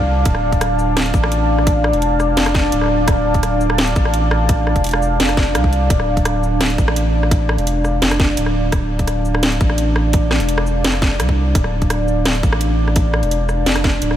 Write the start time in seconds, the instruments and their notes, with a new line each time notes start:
Already playing: sub bass C2, ambient pad D4 D5 F5 A5
0.25 sub bass D1, kick, closed hi-hat
0.35 cross-stick
0.52 kick, closed hi-hat
0.61 cross-stick, closed hi-hat
0.79 shaker
0.97 cross-stick, snare, closed hi-hat
1.06 closed hi-hat
1.14 sub bass A1, kick, shaker
1.24 cross-stick
1.32 closed hi-hat
1.58 cross-stick
1.67 kick, closed hi-hat
1.84 cross-stick
1.93 sub bass E1, closed hi-hat
2.02 closed hi-hat
2.20 cross-stick, shaker
2.37 sub bass F1, snare, closed hi-hat
2.46 cross-stick, closed hi-hat
2.54 kick, snare
2.72 sub bass D1, closed hi-hat
2.81 cross-stick
2.84 cross-stick
2.86 cross-stick
2.88 cross-stick
3.08 sub bass D1, kick, cross-stick, closed hi-hat
3.34 kick, closed hi-hat
3.43 cross-stick, closed hi-hat
3.61 shaker
3.70 cross-stick
3.78 snare, closed hi-hat
3.87 closed hi-hat
3.96 sub bass A1, kick, shaker
4.05 cross-stick
4.14 closed hi-hat
4.31 cross-stick
4.49 kick, closed hi-hat
4.67 cross-stick
4.76 sub bass E1, kick, closed hi-hat
4.84 closed hi-hat
4.87 closed hi-hat
4.89 closed hi-hat
4.91 cross-stick, closed hi-hat
5.02 shaker
5.20 sub bass F1, snare, closed hi-hat
5.29 cross-stick, closed hi-hat
5.37 kick, snare
5.55 sub bass C2, cross-stick, closed hi-hat
5.64 kick
5.73 closed hi-hat
5.90 sub bass D1, kick, closed hi-hat
6.00 cross-stick
6.17 kick, closed hi-hat
6.25 cross-stick, closed hi-hat
6.43 shaker
6.61 cross-stick, snare, closed hi-hat
6.70 closed hi-hat
6.78 sub bass A1, kick, shaker
6.88 cross-stick
6.96 closed hi-hat
7.23 cross-stick
7.31 kick, closed hi-hat
7.49 cross-stick
7.58 sub bass E1, closed hi-hat
7.67 closed hi-hat
7.85 cross-stick, shaker
8.02 sub bass F1, snare, closed hi-hat
8.11 cross-stick, closed hi-hat
8.20 kick, snare
8.37 sub bass D1, closed hi-hat
8.46 cross-stick
8.72 sub bass D1, kick, cross-stick, closed hi-hat
8.99 kick, closed hi-hat
9.07 cross-stick, closed hi-hat
9.25 shaker
9.35 cross-stick
9.43 snare, closed hi-hat
9.52 closed hi-hat
9.61 sub bass A1, kick, shaker
9.70 cross-stick
9.78 closed hi-hat
9.96 cross-stick
10.13 kick, closed hi-hat
10.31 cross-stick, snare
10.40 sub bass E1, closed hi-hat
10.49 closed hi-hat
10.58 cross-stick
10.67 shaker
10.84 sub bass F1, snare, closed hi-hat
10.94 cross-stick
11.02 kick, snare, shaker
11.19 sub bass C2, cross-stick, closed hi-hat
11.29 kick
11.55 sub bass D1, kick, closed hi-hat
11.64 cross-stick
11.82 kick, closed hi-hat
11.90 cross-stick, closed hi-hat
12.08 shaker
12.26 cross-stick, snare, closed hi-hat
12.35 closed hi-hat
12.43 sub bass A1, kick, shaker
12.53 cross-stick
12.61 closed hi-hat
12.88 cross-stick
12.96 kick, closed hi-hat
13.14 cross-stick
13.23 sub bass E1, closed hi-hat
13.31 closed hi-hat
13.49 cross-stick, shaker
13.66 sub bass F1, snare, closed hi-hat
13.75 cross-stick, closed hi-hat
13.84 kick, snare
14.02 sub bass D1, closed hi-hat
14.11 cross-stick